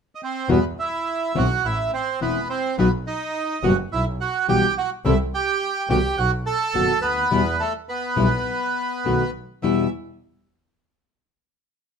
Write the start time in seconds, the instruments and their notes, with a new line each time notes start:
0.15 bandoneon D#5
0.23 bandoneon C4 C5
0.48 double bass E2, nylon-string guitar B2 E3 G3 B3 F#4, bandoneon B3 B4
0.79 bandoneon E4 E5
1.35 double bass B1, nylon-string guitar E3 B3 C4 E4, bandoneon F#4 F#5
1.64 double bass A1, bandoneon E4 E5
1.93 bandoneon C4 C5
2.21 double bass E1, nylon-string guitar E3 B3 C4 E4, bandoneon B3 B4
2.50 bandoneon C4 C5
2.78 double bass B1, nylon-string guitar B2 F#3 B3 D#4 F#4, bandoneon B3 B4
3.07 bandoneon D#4 D#5
3.63 double bass F#1, nylon-string guitar B2 E3 G3 B3 F#4, bandoneon F#4 F#5
3.92 double bass B1, bandoneon E4 E5
4.21 bandoneon F#4 F#5
4.48 double bass B1, nylon-string guitar B2 E3 G3 B3 F#4, bandoneon G4 G5
4.78 bandoneon F#4 F#5
5.05 double bass C2, nylon-string guitar C3 E3 G3 C4 E4 A4, bandoneon E4 E5
5.34 bandoneon G4 G5
5.89 double bass C2, nylon-string guitar B2 D#3 A3 B3 F#4, bandoneon G4 G5
6.17 double bass B1, bandoneon F#4 F#5
6.46 bandoneon A4 A5
6.74 double bass F#1, nylon-string guitar B2 D#3 A3 B3 F#4
7.02 double bass D2, bandoneon B3 B4
7.31 double bass E2, nylon-string guitar B2 E3 G3 B3 E4
7.60 bandoneon A3 A4
7.89 bandoneon B3 B4
8.16 double bass B1, nylon-string guitar B2 E3 G3 B3 E4
9.05 double bass B1, nylon-string guitar B2 D#3 A3 B3 F#4
9.62 nylon-string guitar E2 B2 E3 G3 B3 E4, double bass E2, bandoneon E5